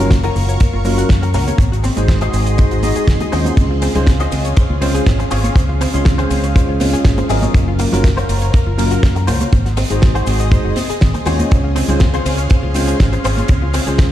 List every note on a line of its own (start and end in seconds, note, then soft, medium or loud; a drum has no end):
0.00 0.28 F#1 medium
0.00 0.12 F#3 loud
0.00 0.12 C#4 medium
0.00 0.12 F4 medium
0.00 0.12 A#4 loud
0.00 1.57 A#4 medium
0.00 1.55 F5 medium
0.00 1.57 C#6 medium
0.11 0.15 A#3 loud
0.11 kick loud
0.11 snare loud
0.11 closed hi-hat medium
0.11 cabasa medium
0.23 0.60 C#4 medium
0.23 0.60 F4 medium
0.23 0.60 F#4 medium
0.23 0.60 A#4 medium
0.23 0.30 A#4 loud
0.23 closed hi-hat medium
0.36 0.60 F#1 loud
0.36 0.46 A#3 medium
0.36 open hi-hat medium
0.36 cabasa medium
0.49 0.55 C#5 medium
0.49 closed hi-hat medium
0.49 cabasa medium
0.60 0.67 A#4 loud
0.60 kick loud
0.60 closed hi-hat medium
0.60 cabasa medium
0.73 1.03 F#1 medium
0.73 0.77 F4 medium
0.73 muted conga soft
0.85 1.06 F#3 loud
0.85 0.92 A#3 loud
0.85 1.07 C#4 medium
0.85 1.07 F4 medium
0.85 1.07 A#4 loud
0.85 open hi-hat loud
0.85 cabasa medium
0.98 1.04 F#4 loud
0.98 muted clean electric guitar stroke soft
0.98 closed hi-hat medium
0.98 cabasa medium
1.09 1.36 F#2 medium
1.09 1.20 A#3 medium
1.09 kick loud
1.09 snare loud
1.09 closed hi-hat medium
1.09 cabasa medium
1.23 1.29 A#4 medium
1.23 muted clean electric guitar stroke medium
1.23 closed hi-hat medium
1.34 1.50 C#2 medium
1.34 1.45 A#3 medium
1.34 1.59 C#4 medium
1.34 1.59 F4 medium
1.34 1.59 F#4 loud
1.34 1.59 A#4 loud
1.34 open hi-hat medium
1.34 cabasa loud
1.48 1.51 C#5 medium
1.48 closed hi-hat medium
1.48 high conga medium
1.48 cabasa medium
1.58 1.89 G#1 loud
1.58 1.66 C4 medium
1.58 7.50 G#4 medium
1.58 3.56 D#5 medium
1.58 7.50 C6 medium
1.58 kick loud
1.58 closed hi-hat loud
1.58 cabasa soft
1.72 1.76 F#4 medium
1.72 closed hi-hat medium
1.84 1.91 C4 loud
1.84 muted clean electric guitar stroke loud
1.84 open hi-hat loud
1.84 high conga medium
1.84 cabasa loud
1.96 2.27 G#1 medium
1.96 2.55 G#3 medium
1.96 2.56 D#4 medium
1.96 2.56 F#4 medium
1.96 2.01 G#4 medium
1.96 2.56 C5 medium
1.96 muted clean electric guitar stroke soft
1.96 closed hi-hat medium
1.96 muted conga soft
1.96 cabasa medium
2.08 2.13 C4 loud
2.08 kick loud
2.08 snare loud
2.08 closed hi-hat medium
2.08 cabasa medium
2.21 2.58 D#4 medium
2.21 2.58 F#4 medium
2.21 2.58 G#4 medium
2.21 2.28 C5 loud
2.21 2.59 D#5 medium
2.21 closed hi-hat medium
2.33 2.63 G#1 loud
2.33 2.44 C4 medium
2.33 open hi-hat medium
2.33 cabasa medium
2.46 2.53 D#5 medium
2.46 closed hi-hat medium
2.46 cabasa medium
2.58 2.81 G#3 medium
2.58 2.81 D#4 medium
2.58 2.81 F#4 medium
2.58 2.65 C5 loud
2.58 2.81 C5 medium
2.58 kick loud
2.58 closed hi-hat medium
2.58 cabasa soft
2.71 2.96 G#1 medium
2.71 2.75 F#4 medium
2.71 closed hi-hat medium
2.83 3.30 G#3 medium
2.83 3.30 D#4 medium
2.83 3.30 F#4 medium
2.83 2.90 D#5 medium
2.83 3.30 D#5 medium
2.83 open hi-hat loud
2.83 high conga medium
2.83 cabasa medium
2.96 3.02 G#4 medium
2.96 muted clean electric guitar stroke soft
2.96 closed hi-hat medium
2.96 cabasa medium
3.08 3.16 F#1 medium
3.08 3.15 C4 medium
3.08 kick loud
3.08 snare loud
3.08 closed hi-hat medium
3.08 cabasa medium
3.20 3.25 D#5 medium
3.20 muted clean electric guitar stroke medium
3.20 closed hi-hat medium
3.20 muted conga medium
3.32 3.49 D#2 medium
3.32 3.92 G#3 medium
3.32 3.37 C4 medium
3.32 3.92 C#4 medium
3.32 3.57 D#4 loud
3.32 3.93 F4 medium
3.32 3.58 F#4 loud
3.32 3.58 G#4 loud
3.32 3.58 C5 loud
3.32 3.93 C5 medium
3.32 open hi-hat loud
3.32 cabasa medium
3.45 3.50 D#4 medium
3.45 closed hi-hat medium
3.45 high conga medium
3.45 cabasa medium
3.57 3.87 C#2 loud
3.57 3.65 C4 medium
3.57 7.50 C#4 medium
3.57 9.49 F5 medium
3.57 kick loud
3.57 closed hi-hat medium
3.57 crash medium
3.57 cabasa soft
3.71 3.74 F4 medium
3.82 3.89 C4 loud
3.82 muted clean electric guitar stroke loud
3.82 open hi-hat loud
3.82 ride medium
3.82 cabasa medium
3.95 4.25 C#2 medium
3.95 4.08 G#3 loud
3.95 4.08 C#4 medium
3.95 4.08 F4 medium
3.95 3.99 G#4 medium
3.95 4.09 C5 loud
3.95 muted clean electric guitar stroke soft
3.95 closed hi-hat medium
3.95 low conga medium
3.95 cabasa medium
4.07 4.11 C4 loud
4.07 kick loud
4.07 snare loud
4.07 closed hi-hat medium
4.07 cabasa soft
4.20 4.57 C#4 medium
4.20 4.57 F4 medium
4.20 4.57 G#4 medium
4.20 4.27 C5 loud
4.20 4.57 D#5 medium
4.20 closed hi-hat medium
4.32 4.57 C#2 medium
4.32 4.42 C4 medium
4.32 open hi-hat medium
4.32 ride medium
4.32 cabasa medium
4.45 4.51 C#5 medium
4.45 closed hi-hat medium
4.45 cabasa medium
4.57 4.64 C5 loud
4.57 kick loud
4.57 closed hi-hat medium
4.57 cabasa medium
4.70 4.99 C#2 medium
4.70 4.74 F4 medium
4.70 muted conga soft
4.81 5.03 G#3 loud
4.81 4.89 C4 loud
4.81 5.03 C#4 medium
4.81 5.03 F4 medium
4.81 5.03 C5 loud
4.81 open hi-hat loud
4.81 ride medium
4.81 cabasa medium
4.94 5.01 G#4 loud
4.94 muted clean electric guitar stroke soft
4.94 closed hi-hat medium
4.94 cabasa medium
5.06 5.22 G#1 medium
5.06 5.17 C4 medium
5.06 kick loud
5.06 snare loud
5.06 closed hi-hat medium
5.06 cabasa medium
5.19 5.26 C5 medium
5.19 muted clean electric guitar stroke medium
5.19 closed hi-hat medium
5.31 5.47 G#1 medium
5.31 5.42 C4 medium
5.31 5.56 C#4 loud
5.31 5.56 F4 medium
5.31 5.56 G#4 loud
5.31 5.56 C#5 loud
5.31 open hi-hat loud
5.31 ride medium
5.31 cabasa medium
5.44 5.48 C#5 medium
5.44 closed hi-hat medium
5.44 high conga loud
5.44 cabasa medium
5.56 5.86 C#2 loud
5.56 5.63 C4 medium
5.56 kick loud
5.56 closed hi-hat loud
5.56 cabasa medium
5.69 5.73 F4 medium
5.81 5.88 C4 loud
5.81 muted clean electric guitar stroke loud
5.81 open hi-hat loud
5.81 ride medium
5.81 cabasa medium
5.94 6.24 C#2 medium
5.94 6.52 G#3 medium
5.94 6.53 C#4 medium
5.94 6.53 F4 medium
5.94 5.98 G#4 medium
5.94 6.53 C6 medium
5.94 muted clean electric guitar stroke soft
5.94 closed hi-hat medium
5.94 cabasa medium
6.05 6.10 C4 loud
6.05 kick loud
6.05 snare loud
6.05 closed hi-hat medium
6.05 cabasa soft
6.18 6.55 C#4 medium
6.18 6.55 F4 medium
6.18 6.55 G#4 medium
6.18 6.55 C5 loud
6.18 6.25 C5 loud
6.18 closed hi-hat soft
6.31 6.61 C#2 loud
6.31 6.41 C4 medium
6.31 open hi-hat loud
6.31 ride medium
6.31 cabasa medium
6.44 6.50 C#5 medium
6.44 closed hi-hat medium
6.44 cabasa medium
6.55 6.78 G#3 medium
6.55 6.78 C#4 medium
6.55 6.78 F4 medium
6.55 6.62 C5 loud
6.55 6.78 C5 medium
6.55 kick loud
6.55 closed hi-hat loud
6.55 cabasa medium
6.69 6.93 C#2 medium
6.69 6.72 F4 medium
6.80 7.27 G#3 medium
6.80 6.87 C4 loud
6.80 7.27 C#4 medium
6.80 7.27 F4 medium
6.80 open hi-hat loud
6.80 ride medium
6.80 high conga medium
6.80 cabasa medium
6.93 6.99 G#4 loud
6.93 muted clean electric guitar stroke soft
6.93 muted fingered electric bass stroke soft
6.93 closed hi-hat medium
6.93 cabasa medium
7.05 7.21 G#1 medium
7.05 7.15 C4 medium
7.05 kick loud
7.05 snare loud
7.05 closed hi-hat medium
7.05 cabasa soft
7.18 7.24 C5 medium
7.18 muted clean electric guitar stroke medium
7.18 closed hi-hat medium
7.18 muted conga medium
7.29 7.46 G#1 medium
7.29 7.89 F#3 medium
7.29 7.40 C4 medium
7.29 7.89 C#4 medium
7.29 7.55 C#4 loud
7.29 7.55 F4 medium
7.29 7.90 F4 medium
7.29 7.55 G#4 loud
7.29 7.90 A#4 medium
7.29 7.55 D#5 loud
7.29 open hi-hat loud
7.29 ride medium
7.29 cabasa medium
7.42 7.47 C#5 medium
7.42 closed hi-hat medium
7.42 high conga loud
7.42 cabasa medium
7.54 7.84 F#1 loud
7.54 7.62 A#3 medium
7.54 9.51 A#4 medium
7.54 kick loud
7.54 closed hi-hat medium
7.54 cabasa soft
7.68 7.71 F4 medium
7.79 7.86 A#3 loud
7.79 muted clean electric guitar stroke loud
7.79 open hi-hat loud
7.79 ride medium
7.79 cabasa medium
7.92 8.22 F#1 medium
7.92 8.05 F#3 loud
7.92 8.05 C#4 medium
7.92 8.05 F4 medium
7.92 7.96 F#4 medium
7.92 8.06 A#4 loud
7.92 muted clean electric guitar stroke soft
7.92 closed hi-hat medium
7.92 low conga medium
7.92 cabasa medium
8.04 8.08 A#3 loud
8.04 kick loud
8.04 snare loud
8.04 closed hi-hat medium
8.04 cabasa medium
8.17 8.54 C#4 medium
8.17 8.54 F4 medium
8.17 8.54 F#4 medium
8.17 8.23 A#4 loud
8.17 8.54 C5 medium
8.17 closed hi-hat soft
8.29 8.53 F#1 loud
8.29 8.39 A#3 medium
8.29 open hi-hat loud
8.29 ride medium
8.29 cabasa medium
8.42 8.48 C#5 medium
8.42 closed hi-hat medium
8.42 cabasa medium
8.53 8.60 A#4 loud
8.53 kick loud
8.53 closed hi-hat medium
8.53 cabasa soft
8.66 8.96 F#1 medium
8.66 8.70 F4 medium
8.66 muted conga soft
8.78 9.00 F#3 loud
8.78 8.85 A#3 loud
8.78 9.00 C#4 medium
8.78 9.00 F4 medium
8.78 9.00 A#4 loud
8.78 open hi-hat loud
8.78 ride medium
8.78 cabasa medium
8.91 8.98 F#4 loud
8.91 muted clean electric guitar stroke soft
8.91 closed hi-hat medium
8.91 cabasa medium
9.03 9.30 F#2 medium
9.03 9.13 A#3 medium
9.03 kick loud
9.03 snare loud
9.03 closed hi-hat medium
9.03 cabasa medium
9.16 9.22 A#4 medium
9.16 muted clean electric guitar stroke medium
9.16 closed hi-hat medium
9.27 9.44 C#2 medium
9.27 9.38 A#3 medium
9.27 9.53 C#4 loud
9.27 9.53 F4 medium
9.27 9.53 F#4 medium
9.27 9.53 C5 loud
9.27 open hi-hat loud
9.27 ride medium
9.27 cabasa medium
9.40 9.45 C#5 medium
9.40 closed hi-hat medium
9.40 high conga medium
9.40 cabasa medium
9.53 9.83 G#1 loud
9.53 9.60 C4 medium
9.53 14.12 G#4 medium
9.53 11.49 D#5 medium
9.53 14.12 C6 medium
9.53 kick loud
9.53 closed hi-hat medium
9.53 cabasa soft
9.66 9.69 F#4 medium
9.66 snare soft
9.66 closed hi-hat medium
9.77 9.84 C4 loud
9.77 muted clean electric guitar stroke loud
9.77 open hi-hat loud
9.77 ride medium
9.77 cabasa medium
9.90 10.20 G#1 medium
9.90 10.49 G#3 medium
9.90 10.49 D#4 medium
9.90 10.49 F#4 medium
9.90 9.94 G#4 medium
9.90 10.50 C5 loud
9.90 muted clean electric guitar stroke soft
9.90 closed hi-hat medium
9.90 cabasa medium
10.02 10.06 C4 loud
10.02 kick loud
10.02 snare loud
10.02 closed hi-hat medium
10.02 cabasa soft
10.15 10.52 D#4 medium
10.15 10.52 F#4 medium
10.15 10.52 G#4 medium
10.15 10.21 C5 loud
10.15 10.52 C5 medium
10.15 closed hi-hat medium
10.27 10.57 G#1 medium
10.27 10.37 C4 medium
10.27 open hi-hat loud
10.27 ride medium
10.27 cabasa medium
10.40 10.46 D#5 medium
10.40 closed hi-hat medium
10.40 cabasa medium
10.51 10.74 G#3 medium
10.51 10.74 D#4 medium
10.51 10.74 F#4 medium
10.51 10.59 C5 loud
10.51 10.75 C5 medium
10.51 kick loud
10.51 closed hi-hat medium
10.51 cabasa medium
10.65 10.72 F#1 medium
10.65 10.69 F#4 medium
10.76 10.83 C4 loud
10.76 open hi-hat loud
10.76 ride medium
10.76 high conga medium
10.76 cabasa medium
10.89 10.96 G#4 loud
10.89 muted clean electric guitar stroke soft
10.89 muted fingered electric bass stroke soft
10.89 closed hi-hat medium
10.89 cabasa medium
11.01 11.10 G#1 medium
11.01 11.12 C4 medium
11.01 kick loud
11.01 snare loud
11.01 closed hi-hat medium
11.01 cabasa soft
11.14 11.21 C5 medium
11.14 muted clean electric guitar stroke medium
11.14 closed hi-hat medium
11.14 muted conga medium
11.25 11.42 D#2 loud
11.25 11.85 G#3 medium
11.25 11.37 C4 medium
11.25 11.86 C#4 medium
11.25 11.51 D#4 loud
11.25 11.86 F4 medium
11.25 11.51 F#4 medium
11.25 11.51 G#4 loud
11.25 11.51 C5 loud
11.25 11.86 C#5 medium
11.25 open hi-hat medium
11.25 ride medium
11.25 cabasa medium
11.39 11.43 D#5 medium
11.39 closed hi-hat medium
11.39 high conga medium
11.39 cabasa medium
11.51 11.81 C#2 loud
11.51 11.58 C4 medium
11.51 14.12 C#4 medium
11.51 14.12 F5 medium
11.51 kick loud
11.51 closed hi-hat medium
11.51 cabasa medium
11.64 11.68 F4 medium
11.75 11.83 C4 loud
11.75 muted clean electric guitar stroke loud
11.75 open hi-hat loud
11.75 ride medium
11.75 cabasa medium
11.88 12.18 C#2 medium
11.88 12.02 G#3 loud
11.88 12.02 C#4 medium
11.88 12.02 F4 medium
11.88 11.93 G#4 medium
11.88 12.02 C5 loud
11.88 muted clean electric guitar stroke soft
11.88 closed hi-hat medium
11.88 low conga medium
11.88 cabasa medium
12.00 12.05 C4 loud
12.00 kick loud
12.00 snare loud
12.00 closed hi-hat medium
12.00 cabasa soft
12.14 12.50 C#4 medium
12.14 12.51 F4 medium
12.14 12.51 G#4 medium
12.14 12.20 C5 loud
12.14 12.51 C5 loud
12.14 closed hi-hat medium
12.25 12.50 C#2 loud
12.25 12.36 C4 medium
12.25 open hi-hat loud
12.25 ride medium
12.25 cabasa medium
12.38 12.45 C#5 medium
12.38 closed hi-hat medium
12.38 cabasa medium
12.50 12.57 C5 loud
12.50 kick loud
12.50 closed hi-hat medium
12.50 cabasa soft
12.63 12.93 C#2 medium
12.63 12.67 F4 medium
12.63 muted conga soft
12.74 12.96 G#3 loud
12.74 12.82 C4 loud
12.74 12.96 C#4 medium
12.74 12.97 F4 medium
12.74 12.97 C5 loud
12.74 open hi-hat loud
12.74 ride medium
12.74 cabasa medium
12.88 12.94 G#4 loud
12.88 muted clean electric guitar stroke soft
12.88 closed hi-hat medium
12.88 cabasa medium
12.99 13.16 G#1 medium
12.99 13.07 C4 medium
12.99 kick loud
12.99 snare loud
12.99 closed hi-hat medium
12.99 cabasa medium
13.12 13.19 C5 medium
13.12 muted clean electric guitar stroke medium
13.12 closed hi-hat soft
13.24 13.41 G#1 medium
13.24 13.35 C4 medium
13.24 13.50 C#4 loud
13.24 13.50 F4 medium
13.24 13.50 G#4 loud
13.24 13.50 C5 loud
13.24 open hi-hat loud
13.24 ride loud
13.24 cabasa loud
13.37 13.41 C#5 medium
13.37 closed hi-hat medium
13.37 high conga medium
13.37 cabasa medium
13.48 13.79 C#2 loud
13.48 13.56 C4 medium
13.48 kick loud
13.48 closed hi-hat medium
13.48 cabasa medium
13.62 13.66 F4 medium
13.74 13.81 C4 loud
13.74 muted clean electric guitar stroke loud
13.74 open hi-hat loud
13.74 ride loud
13.74 cabasa medium
13.86 14.12 C#2 medium
13.86 14.12 G#3 medium
13.86 14.12 C#4 medium
13.86 14.12 F4 medium
13.86 13.91 G#4 medium
13.86 14.12 C5 medium
13.86 muted clean electric guitar stroke soft
13.86 closed hi-hat medium
13.86 cabasa medium
13.98 14.03 C4 loud
13.98 kick loud
13.98 snare loud
13.98 closed hi-hat medium
13.98 cabasa medium